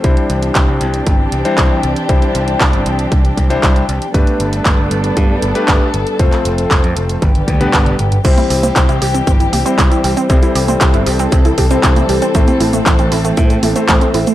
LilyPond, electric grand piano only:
\new Staff \with { instrumentName = "Electric grand piano" } { \time 4/4 \key c \major \tempo 4 = 117 <g d' e' c''>2~ <g d' e' c''>8. <g d' e' c''>8. r8 | <g d' e' c''>2~ <g d' e' c''>8. <g d' e' c''>8. r8 | <a d' g' b'>2~ <a d' g' b'>8. <a d' g' b'>8. r8 | <a c' f' c''>2 r8. <g b d' b'>8. r8 |
<g c' e' c''>2~ <g c' e' c''>8. <g c' e' c''>4~ <g c' e' c''>16 | <g c' e' c''>2~ <g c' e' c''>8. <g c' e' c''>4~ <g c' e' c''>16 | <a c' e' c''>2~ <a c' e' c''>8. <a c' e' c''>4~ <a c' e' c''>16 | }